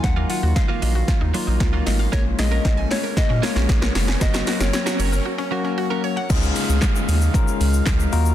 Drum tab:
CC |----------------|----------------|----------------|x---------------|
HH |x-o-x-o-x-o-x-o-|x-o-x-o-x-o-x-o-|x-o-x-o---------|x-o-x-o-x-o-x-o-|
SH |----------------|----------------|xxxxxxxx--------|xxxxxxxxxxxxxxxx|
CP |----------------|----------------|----------------|----x-------x---|
SD |o---o---o---o-o-|o-o-o-o-o-oooooo|oooooo----------|----o-------o---|
BD |o---o---o---o---|o---o---o---o---|o---------------|o---o---o---o---|